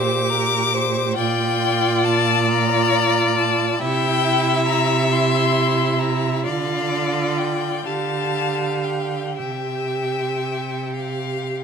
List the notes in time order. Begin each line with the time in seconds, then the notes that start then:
Already playing: A#2 G4 C5 D6
0.30 A#4
0.74 C5
1.16 A#2 F4 D5 G5
2.04 A5
2.49 F4 A#5
3.38 A5
3.79 C3 E4 E5 G5
4.66 A#5
5.11 E4 C6
5.99 A#5
6.45 D3 F4 D5 F5
7.37 G5
7.85 D3 G4 F5 A5
8.84 G5
9.37 C3 G4 E5 G5
10.94 F5